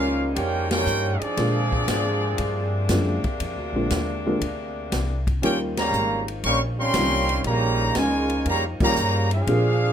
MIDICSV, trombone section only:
0, 0, Header, 1, 2, 480
1, 0, Start_track
1, 0, Tempo, 505902
1, 1307, Time_signature, 4, 2, 24, 8
1, 9419, End_track
2, 0, Start_track
2, 0, Title_t, "Trombone section"
2, 0, Program_c, 0, 61
2, 0, Note_on_c, 0, 58, 90
2, 0, Note_on_c, 0, 61, 85
2, 0, Note_on_c, 0, 65, 85
2, 274, Note_off_c, 0, 58, 0
2, 274, Note_off_c, 0, 61, 0
2, 274, Note_off_c, 0, 65, 0
2, 329, Note_on_c, 0, 67, 99
2, 332, Note_on_c, 0, 61, 92
2, 333, Note_on_c, 0, 58, 88
2, 648, Note_off_c, 0, 58, 0
2, 649, Note_off_c, 0, 67, 0
2, 653, Note_off_c, 0, 61, 0
2, 659, Note_on_c, 0, 58, 94
2, 660, Note_on_c, 0, 67, 90
2, 665, Note_on_c, 0, 61, 97
2, 1114, Note_off_c, 0, 58, 0
2, 1115, Note_off_c, 0, 67, 0
2, 1117, Note_off_c, 0, 61, 0
2, 1131, Note_on_c, 0, 62, 93
2, 1131, Note_on_c, 0, 68, 96
2, 1133, Note_on_c, 0, 53, 92
2, 3064, Note_off_c, 0, 62, 0
2, 3064, Note_off_c, 0, 68, 0
2, 3065, Note_off_c, 0, 53, 0
2, 5141, Note_on_c, 0, 61, 88
2, 5141, Note_on_c, 0, 67, 94
2, 5142, Note_on_c, 0, 58, 93
2, 5291, Note_off_c, 0, 61, 0
2, 5291, Note_off_c, 0, 67, 0
2, 5292, Note_off_c, 0, 58, 0
2, 5462, Note_on_c, 0, 55, 103
2, 5464, Note_on_c, 0, 58, 99
2, 5466, Note_on_c, 0, 49, 95
2, 5915, Note_off_c, 0, 55, 0
2, 5916, Note_off_c, 0, 58, 0
2, 5917, Note_off_c, 0, 49, 0
2, 6104, Note_on_c, 0, 55, 96
2, 6106, Note_on_c, 0, 58, 101
2, 6109, Note_on_c, 0, 61, 102
2, 6253, Note_off_c, 0, 55, 0
2, 6255, Note_off_c, 0, 58, 0
2, 6257, Note_off_c, 0, 61, 0
2, 6439, Note_on_c, 0, 60, 101
2, 6440, Note_on_c, 0, 61, 102
2, 6441, Note_on_c, 0, 55, 103
2, 7029, Note_off_c, 0, 60, 0
2, 7030, Note_off_c, 0, 55, 0
2, 7030, Note_off_c, 0, 61, 0
2, 7071, Note_on_c, 0, 49, 112
2, 7071, Note_on_c, 0, 55, 106
2, 7071, Note_on_c, 0, 58, 109
2, 7548, Note_off_c, 0, 49, 0
2, 7548, Note_off_c, 0, 55, 0
2, 7548, Note_off_c, 0, 58, 0
2, 7555, Note_on_c, 0, 56, 91
2, 7557, Note_on_c, 0, 46, 95
2, 7562, Note_on_c, 0, 49, 92
2, 8027, Note_off_c, 0, 49, 0
2, 8030, Note_off_c, 0, 56, 0
2, 8031, Note_off_c, 0, 46, 0
2, 8038, Note_on_c, 0, 49, 87
2, 8040, Note_on_c, 0, 58, 90
2, 8041, Note_on_c, 0, 55, 91
2, 8184, Note_off_c, 0, 49, 0
2, 8185, Note_off_c, 0, 58, 0
2, 8186, Note_off_c, 0, 55, 0
2, 8374, Note_on_c, 0, 55, 94
2, 8377, Note_on_c, 0, 58, 94
2, 8378, Note_on_c, 0, 49, 92
2, 8812, Note_off_c, 0, 55, 0
2, 8813, Note_off_c, 0, 58, 0
2, 8814, Note_off_c, 0, 49, 0
2, 8854, Note_on_c, 0, 62, 92
2, 8854, Note_on_c, 0, 68, 90
2, 8856, Note_on_c, 0, 65, 88
2, 9419, Note_off_c, 0, 62, 0
2, 9419, Note_off_c, 0, 65, 0
2, 9419, Note_off_c, 0, 68, 0
2, 9419, End_track
0, 0, End_of_file